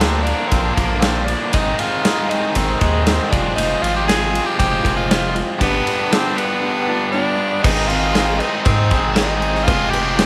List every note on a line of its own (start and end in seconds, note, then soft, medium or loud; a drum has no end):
0.00 0.33 D2 medium
0.00 0.24 A#2 medium
0.00 0.26 A#2 medium
0.00 0.24 D3 medium
0.00 1.01 D3 medium
0.00 0.25 F3 medium
0.00 0.26 F3 medium
0.00 0.25 A#3 medium
0.00 0.26 A#3 medium
0.00 0.24 C4 medium
0.00 0.25 D4 medium
0.00 0.24 F4 medium
0.00 0.24 A#4 medium
0.00 snare loud
0.00 ride medium
0.22 0.49 D4 medium
0.22 0.51 D4 soft
0.22 0.51 F4 soft
0.22 1.51 A#4 medium
0.27 1.51 A#2 medium
0.27 1.52 D3 medium
0.27 1.52 F3 medium
0.27 0.50 A#3 soft
0.27 ride medium
0.47 0.77 F3 medium
0.47 0.76 C4 medium
0.51 0.71 A#1 loud
0.51 0.77 A#3 medium
0.51 0.77 D4 medium
0.51 0.75 F4 medium
0.51 kick medium
0.51 ride medium
0.74 1.35 A#1 medium
0.74 1.02 A#3 medium
0.74 1.03 D4 soft
0.74 1.02 F4 soft
0.74 kick medium
0.74 ride medium
0.80 1.01 F3 medium
0.80 1.03 A#3 soft
1.01 1.28 A#2 medium
1.01 1.52 D3 medium
1.01 1.29 F3 medium
1.01 1.29 A#3 medium
1.01 1.27 C4 medium
1.01 snare loud
1.01 ride medium
1.06 1.29 D4 medium
1.06 1.28 F4 medium
1.25 1.52 A#3 medium
1.25 1.52 D4 medium
1.25 1.51 D4 medium
1.25 1.54 F4 medium
1.25 ride medium
1.30 1.53 F3 medium
1.30 1.55 A#3 soft
1.30 1.55 D4 soft
1.53 1.73 G#1 medium
1.53 1.79 G#2 medium
1.53 1.79 D#3 medium
1.53 1.80 G#3 medium
1.53 1.80 C4 medium
1.53 1.80 D#4 loud
1.53 1.80 D#4 medium
1.53 1.78 G#4 medium
1.53 kick loud
1.53 ride medium
1.79 2.04 G#3 soft
1.79 2.04 C4 soft
1.79 2.06 D#4 medium
1.79 2.31 F4 medium
1.79 2.04 G#4 medium
1.79 ride medium
2.05 2.30 G#2 medium
2.05 2.30 D#3 medium
2.05 2.30 G#3 medium
2.05 2.30 C4 medium
2.05 2.30 D#4 medium
2.05 2.29 G#4 medium
2.05 snare loud
2.05 ride medium
2.30 3.31 G#2 medium
2.30 3.30 D#3 medium
2.30 2.54 G#3 soft
2.30 2.55 C4 soft
2.30 2.58 D#4 medium
2.30 2.56 D#4 medium
2.30 2.55 G#4 soft
2.30 ride medium
2.55 2.75 G#1 loud
2.55 2.80 G#3 medium
2.55 2.81 C4 medium
2.55 2.82 C4 loud
2.55 2.82 D#4 medium
2.55 2.79 G#4 medium
2.55 kick medium
2.55 ride medium
2.80 3.19 D#2 loud
2.80 3.06 G#3 medium
2.80 3.07 C4 soft
2.80 3.06 D#4 medium
2.80 3.06 G#4 medium
2.80 kick medium
2.80 ride medium
2.84 3.06 G#3 soft
3.05 3.31 G#2 medium
3.05 3.32 D#3 medium
3.05 3.32 G#3 medium
3.05 3.32 C4 medium
3.05 3.32 D#4 medium
3.05 3.32 G#4 medium
3.05 snare loud
3.05 ride medium
3.30 3.51 F1 medium
3.30 4.05 F3 medium
3.30 4.06 C4 medium
3.30 3.58 C4 medium
3.30 3.55 D4 medium
3.30 3.56 F4 soft
3.30 3.57 G4 medium
3.30 4.07 G#4 medium
3.30 kick loud
3.30 ride medium
3.35 3.55 F3 soft
3.35 3.56 G#3 soft
3.55 3.76 F1 loud
3.55 3.81 F2 medium
3.55 3.82 C3 medium
3.55 3.82 F3 medium
3.55 3.97 G#3 medium
3.55 3.81 G#3 medium
3.55 4.09 C4 medium
3.55 3.84 D#4 loud
3.55 3.98 F4 medium
3.55 3.81 F4 medium
3.55 3.79 G4 medium
3.55 ride medium
3.80 4.40 G#1 medium
3.80 4.04 F3 soft
3.80 4.06 G#3 soft
3.80 4.06 F4 medium
3.80 3.95 F4 loud
3.80 4.06 G4 medium
3.80 ride medium
3.96 4.07 G4 medium
4.05 4.32 F2 medium
4.05 4.32 C3 medium
4.05 4.32 F3 medium
4.05 4.48 G#3 medium
4.05 4.32 G#3 medium
4.05 5.33 C4 medium
4.05 4.31 F4 medium
4.05 4.48 F4 medium
4.05 4.29 G4 medium
4.05 4.47 G#4 loud
4.05 5.33 G#4 medium
4.09 4.85 C4 medium
4.09 snare loud
4.09 ride medium
4.30 4.56 F3 soft
4.30 4.57 G#3 soft
4.30 4.58 F4 medium
4.30 4.57 G4 medium
4.35 ride medium
4.45 4.58 G4 loud
4.57 4.78 F1 loud
4.57 4.83 F3 medium
4.57 4.78 G#3 medium
4.57 4.78 F4 medium
4.57 4.84 F4 medium
4.57 4.78 G4 medium
4.57 4.94 G4 loud
4.57 4.82 G4 medium
4.57 kick medium
4.57 ride medium
4.83 5.42 F1 loud
4.83 5.09 F3 soft
4.83 5.04 G#3 medium
4.83 5.10 G#3 soft
4.83 5.10 C4 medium
4.83 5.04 F4 medium
4.83 5.10 F4 medium
4.83 5.09 G4 medium
4.83 5.04 A#4 medium
4.83 kick medium
4.83 ride medium
4.97 5.08 F4 medium
5.09 5.35 F2 medium
5.09 5.35 C3 medium
5.09 5.35 F3 medium
5.09 5.50 G#3 medium
5.09 5.34 G#3 medium
5.09 5.35 C4 medium
5.09 5.50 F4 medium
5.09 5.46 F4 medium
5.09 5.33 F4 medium
5.09 5.32 G4 medium
5.09 snare loud
5.09 ride medium
5.33 5.58 F3 soft
5.33 5.59 G#3 soft
5.33 5.60 C4 medium
5.33 5.60 F4 medium
5.33 5.59 G4 medium
5.33 ride medium
5.57 5.80 G1 medium
5.57 5.84 G2 medium
5.57 5.85 D3 medium
5.57 5.85 G3 medium
5.57 5.85 B3 medium
5.57 6.01 B3 medium
5.57 6.01 D4 medium
5.57 5.85 D4 medium
5.57 5.85 G4 medium
5.57 6.01 G4 loud
5.57 kick loud
5.57 ride medium
5.62 6.14 B3 loud
5.87 6.10 G3 medium
5.87 6.09 B3 soft
5.87 6.11 D4 soft
5.87 6.12 G4 medium
5.87 ride medium
6.09 6.36 G2 medium
6.09 6.36 D3 medium
6.09 6.36 G3 medium
6.09 6.51 B3 medium
6.09 6.36 B3 medium
6.09 6.39 C4 loud
6.09 6.51 D4 medium
6.09 6.37 D4 medium
6.09 6.52 F4 medium
6.09 6.35 G4 medium
6.09 snare loud
6.09 ride medium
6.37 7.62 G2 medium
6.37 7.62 D3 medium
6.37 6.60 G3 soft
6.37 7.11 B3 medium
6.37 6.61 B3 soft
6.37 6.62 D4 medium
6.37 6.62 G4 medium
6.37 ride medium
6.61 6.87 G3 medium
6.61 6.82 B3 medium
6.61 6.87 B3 medium
6.61 6.82 D4 medium
6.61 6.86 D4 medium
6.61 6.82 G4 medium
6.61 6.85 G4 medium
6.87 7.12 G3 medium
6.87 7.08 B3 medium
6.87 7.12 B3 medium
6.87 7.12 D4 medium
6.87 7.08 D4 medium
6.87 7.08 F4 medium
7.11 7.38 G2 medium
7.11 7.38 D3 medium
7.11 7.38 G3 medium
7.11 7.37 B3 loud
7.11 7.54 B3 medium
7.11 7.64 D4 loud
7.11 7.54 D4 medium
7.11 7.36 D4 loud
7.11 7.54 F4 medium
7.11 7.35 G4 medium
7.36 7.63 G3 medium
7.36 7.64 B3 medium
7.36 7.63 D4 medium
7.36 7.63 G4 medium
7.62 8.41 G#1 loud
7.62 7.88 G#2 medium
7.62 7.89 D#3 medium
7.62 7.89 G#3 medium
7.62 7.89 C4 medium
7.62 7.89 D#4 loud
7.62 7.89 D#4 medium
7.62 8.05 D#4 medium
7.62 7.88 G#4 medium
7.62 kick loud
7.62 crash loud
7.62 cowbell medium
7.62 crash medium
7.66 8.05 C4 medium
7.66 8.06 G#4 medium
7.87 8.15 D#4 soft
7.87 8.40 F4 loud
7.87 8.14 G#4 medium
7.87 crash medium
7.92 8.15 G#3 soft
7.92 8.14 C4 medium
8.14 8.40 G#2 medium
8.14 8.40 D#3 medium
8.14 8.40 G#3 medium
8.14 8.40 C4 medium
8.14 8.56 C4 medium
8.14 8.41 D#4 medium
8.14 8.56 D#4 medium
8.14 8.40 G#4 medium
8.14 8.56 G#4 medium
8.14 snare loud
8.14 cowbell medium
8.14 crash medium
8.39 8.63 D#4 medium
8.39 8.67 D#4 medium
8.39 8.66 G#4 medium
8.39 cowbell medium
8.39 crash medium
8.43 8.64 G#3 soft
8.43 8.66 C4 soft
8.64 8.93 G#2 loud
8.64 8.91 G#3 medium
8.64 9.16 C4 medium
8.64 8.91 C4 medium
8.64 9.07 C4 medium
8.64 9.07 D#4 medium
8.64 8.91 D#4 medium
8.64 kick loud
8.64 cowbell medium
8.64 crash medium
8.69 8.90 G#4 medium
8.91 9.69 G#1 medium
8.91 9.18 G#3 soft
8.91 9.17 C4 medium
8.91 9.17 D#4 soft
8.91 9.16 G#4 medium
8.91 kick medium
8.91 crash medium
9.14 9.42 G#2 medium
9.14 9.56 C4 medium
9.14 9.65 D#4 loud
9.14 9.56 D#4 medium
9.14 9.56 G#4 medium
9.14 snare loud
9.14 cowbell medium
9.14 crash medium
9.18 9.42 D#3 medium
9.18 9.43 G#3 medium
9.18 9.43 C4 medium
9.18 9.42 D#4 medium
9.18 9.41 G#4 medium
9.42 9.66 G#3 soft
9.42 9.66 C4 soft
9.42 9.67 D#4 medium
9.42 9.67 G#4 medium
9.42 crash medium
9.55 snare soft
9.64 9.92 F2 medium
9.64 9.92 C3 medium
9.64 9.92 G#3 medium
9.64 10.07 C4 medium
9.64 9.93 C4 medium
9.64 9.92 F4 loud
9.64 10.07 F4 medium
9.64 10.07 G#4 loud
9.64 cowbell loud
9.64 crash medium
9.68 10.26 F1 loud
9.68 9.93 F3 medium
9.68 9.91 F4 medium
9.68 9.91 G#4 loud
9.68 kick loud
9.90 10.18 C4 soft
9.90 10.18 F4 medium
9.90 10.26 G4 loud
9.90 10.17 G#4 medium
9.90 cowbell medium
9.90 crash medium
9.94 10.16 F3 soft
9.94 10.18 G#3 medium
10.17 10.26 F2 medium
10.17 10.26 C3 medium
10.17 10.26 F3 medium
10.17 10.26 G#3 medium
10.17 10.26 C4 medium
10.17 10.26 F4 medium
10.17 10.26 G#4 loud
10.17 10.26 G#4 medium
10.17 snare loud
10.17 cowbell medium
10.17 crash medium